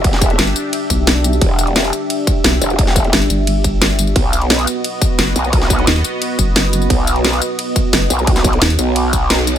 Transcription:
<<
  \new Staff \with { instrumentName = "Analog synth pad" } { \time 4/4 \key e \minor \tempo 4 = 175 <d' g' e''>1~ | <d' g' e''>1~ | <d' g' e''>1 | <b fis' dis''>1~ |
<b fis' dis''>1~ | <b fis' dis''>1~ | <b fis' dis''>1 | }
  \new Staff \with { instrumentName = "Wobble bass" } { \clef bass \time 4/4 \key e \minor e,,4 r2. | e,,4. r2 e,,8~ | e,,4 r2. | b,,4. r2 b,,8~ |
b,,4 r2. | b,,4. r2 b,,8~ | b,,4 r8 b,,2~ b,,8 | }
  \new Staff \with { instrumentName = "Wobble bass" } { \clef bass \time 4/4 \key e \minor r4 g,,8 r4 b,,4. | r2. b,,8 r8 | r4 g,,8 g,,2~ g,,8 | r2. fis,,8 r8 |
r4 dis,8 r4 fis,,4. | r2. fis,,8 r8 | r4 dis,8 r2 r8 | }
  \new DrumStaff \with { instrumentName = "Drums" } \drummode { \time 4/4 <hh bd cymr>16 sn16 <hh bd tamb>16 hh16 <hh cymr sn>16 tamb16 <hh tamb>8 <hh cymr>8 <hh bd tamb>8 <hh cymr sn>8 <hh tamb>16 tamb16 | <hh bd cymr>8 <hh tamb>16 hh16 <hh cymr sn>16 tamb16 <hh tamb>8 <hh cymr>8 <hh bd tamb>8 <hh cymr sn>8 <hh tamb>16 tamb16 | <hh bd cymr>16 sn16 <hh bd tamb>16 hh16 <hh cymr sn>16 tamb16 <hh tamb>8 <hh cymr>8 <hh bd tamb>8 <hh cymr sn>8 <hh tamb>16 tamb16 | <hh bd cymr>8 <hh tamb>16 hh16 <hh cymr sn>16 tamb16 <hh tamb>8 <hh cymr>8 <hh bd tamb>8 <hh cymr sn>8 <hh tamb>16 tamb16 |
<hh bd cymr>16 sn16 <hh bd tamb>16 hh16 <hh cymr sn>16 tamb16 <hh tamb>8 <hh cymr>8 <hh bd tamb>8 <hh cymr sn>8 <hh tamb>16 tamb16 | <hh bd cymr>8 <hh tamb>16 hh16 <hh cymr sn>16 tamb16 <hh tamb>8 <hh cymr>8 <hh bd tamb>8 <hh cymr sn>8 <hh tamb>16 tamb16 | <hh bd cymr>16 <sn tamb>16 <hh bd tamb>16 hh16 <hh cymr sn>16 <hh tamb>16 <hh tamb>8 <hh cymr>8 <hh bd tamb>8 <hh cymr sn>16 hh16 <hh tamb>8 | }
>>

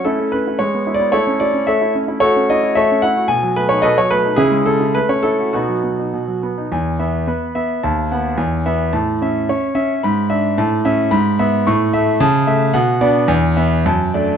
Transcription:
<<
  \new Staff \with { instrumentName = "Grand piano" } { \time 2/4 \key a \major \tempo 4 = 109 <cis' e' a'>8 b'8 \tuplet 3/2 { cis''4 d''8 } | <e' a' cis''>8 d''8 <a' cis'' e''>8 r8 | \key e \major <fis' a' cis''>8 dis''8 <a' cis'' e''>8 fis''8 | gis''8 b'16 cis''16 <a' b' dis''>16 cis''16 b'8 |
<cis' e' gis'>8 a'8 b'16 cis''16 a'8 | <b dis' fis'>4. r8 | gis''8 e''8 b'8 e''8 | a''8 fis''8 gis''8 e''8 |
a''8 e''8 cis''8 e''8 | b''8 e''8 a''8 e''8 | \key a \major b''8 e''8 cis'''8 e''8 | a''8 e''8 fis''8 d''8 |
gis''8 e''8 a''8 d''8 | }
  \new Staff \with { instrumentName = "Grand piano" } { \time 2/4 \key a \major a16 a16 cis'16 e'16 gis16 b16 e'16 b16 | a16 cis'16 e'16 cis'16 a16 e'16 cis'16 e'16 | \key e \major a16 cis'16 e'16 fis'16 a16 cis'16 e'16 fis'16 | b,16 fis16 a16 dis'16 b,16 fis16 a16 dis'16 |
cis16 gis16 cis'16 e'16 a16 cis'16 e'16 fis'16 | b,16 fis16 b16 dis'16 b,16 fis16 b16 dis'16 | e,8 b8 b8 b8 | dis,8 b8 e,8 b8 |
a,8 cis'8 cis'8 cis'8 | gis,8 d'8 a,8 cis'8 | \key a \major gis,8 b8 a,8 a8 | cis8 a8 b,8 <b d'>8 |
e,8 b8 fis,8 <a d'>8 | }
>>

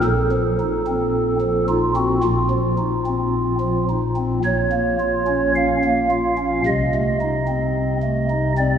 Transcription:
<<
  \new Staff \with { instrumentName = "Pipe organ" } { \time 4/4 \key f \phrygian \tempo 4 = 55 << { a'4. f'16 ges'16 f'4. r8 | des''4 f''4 ees''4.~ ees''16 d''16 | } \\ { bes,16 f16 ees'16 c'8 f16 ees'16 c'16 bes,16 f16 ees'16 c'8 f16 ees'16 c'16 | bes,16 bes16 f'16 des'8 bes16 f'16 des'16 c16 a16 ees'16 c'8 a16 ees'16 c'16 | } >> }
  \new Staff \with { instrumentName = "Pipe organ" } { \clef bass \time 4/4 \key f \phrygian bes,,2 bes,,2 | bes,,2 c,2 | }
>>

